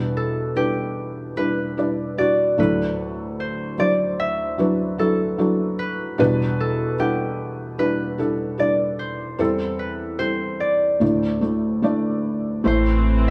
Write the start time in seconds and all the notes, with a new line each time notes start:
Already playing: E2 B2 G3 D4 E4 A4 B4
0.17 A4
0.56 G3 D4 E4 G4 B4
1.37 G3 D4 E4 B4
1.77 G3 D4 E4 D5
2.18 G3 D4 E4 F#4 D5
2.58 D2 A2 F#3 D4 E4 A4 B4
3.40 C5
3.78 F#3 D4 E4 C5 D5
4.20 E5
4.58 F#3 D4 E4 B4
4.98 F#3 D4 E4 A4
5.38 F#3 D4 E4 A4
5.79 B4
6.18 E2 B2 G3 D4 E4 B4
6.60 A4
6.98 G3 D4 E4 G4 F#5
7.78 G3 D4 E4 B4
8.18 G3 D4 E4 A4
8.58 G3 D4 E4 D5
8.99 C5
9.38 E2 E3 G3 C4 E4 A4
9.79 B4
10.18 G3 C4 E4 A4 C5
10.60 D5
11.00 D2 A2 A3 D4 E4 D5
11.41 A3 D4 E4 A4
11.82 A3 D4 E4 D5
12.64 A1 A2 E3 A3 C4 E4 C5